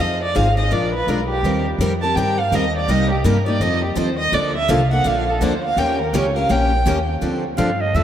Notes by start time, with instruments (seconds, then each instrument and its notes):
0.00 upright bass F2, steel-string acoustic guitar F3 C4 D#4 G#4, violin D#5
0.23 violin D5
0.35 upright bass G#1, steel-string acoustic guitar F3 C4 D#4 G#4, violin F5
0.57 steel-string acoustic guitar C4 D#4 G#4, violin D#5
0.71 upright bass A#1, steel-string acoustic guitar F3 G#3 D4 F4 A#4, violin D5
0.94 violin B4
1.07 upright bass B1, steel-string acoustic guitar F3 G#3 D4 F4 A#4, violin A#4
1.29 violin G4
1.43 upright bass D#2, steel-string acoustic guitar D#3 G3 C4 G4 A#4
1.78 upright bass F2, steel-string acoustic guitar D#3 G3 C4 G4 A#4
2.02 steel-string acoustic guitar C4 G4 A#4, violin A5
2.15 upright bass G2, steel-string acoustic guitar D#3 G3 C4 G4 A#4, violin G5
2.39 violin F5
2.52 upright bass D#2, steel-string acoustic guitar D#3 G3 C4 G4 A#4, violin D#5
2.77 violin D5
2.88 upright bass C2, steel-string acoustic guitar C3 G3 A#3 D#4 G4, violin D#5
3.11 violin G4
3.24 upright bass G2, steel-string acoustic guitar C3 G3 A#3 D#4 G4, violin A#4
3.46 steel-string acoustic guitar A#3 D#4 G4, violin D5
3.60 upright bass F2, steel-string acoustic guitar F3 C4 D#4 A4, violin D#5
3.85 violin G4
3.96 upright bass D#2, steel-string acoustic guitar F3 C4 D#4 A4, violin C5
4.19 violin D#5
4.32 upright bass D2, steel-string acoustic guitar D3 F3 A#3 D4 A4, violin D5
4.56 violin E5
4.68 upright bass C2, steel-string acoustic guitar D3 F3 A#3 D4 A4, violin F5
4.91 steel-string acoustic guitar A#3 D4 A4, violin F#5
5.04 upright bass A#1, steel-string acoustic guitar D3 F3 A#3 D4 A4, violin F5
5.29 violin A4
5.41 upright bass D2, steel-string acoustic guitar D3 F3 A#3 D4 A4, violin C5
5.65 violin F5
5.77 upright bass D#2, steel-string acoustic guitar D#3 A#3 C#4 G4 A#4, violin G5
6.01 violin A#4
6.13 upright bass C#2, steel-string acoustic guitar D#3 A#3 C#4 G4 A#4, violin C#5
6.36 steel-string acoustic guitar C#4 G4 A#4, violin F5
6.50 upright bass A#1, steel-string acoustic guitar D#3 A#3 C#4 G4 A#4, violin G5
6.86 upright bass D#2, steel-string acoustic guitar D#3 A#3 C#4 G4 A#4
7.21 upright bass D2, steel-string acoustic guitar D3 F3 C4 D4 A4
7.57 upright bass G2, steel-string acoustic guitar D3 F3 C4 D4 A4, clarinet F5
7.81 clarinet D#5
7.94 upright bass E2, steel-string acoustic guitar D3 F3 C4 D4 A4, clarinet E5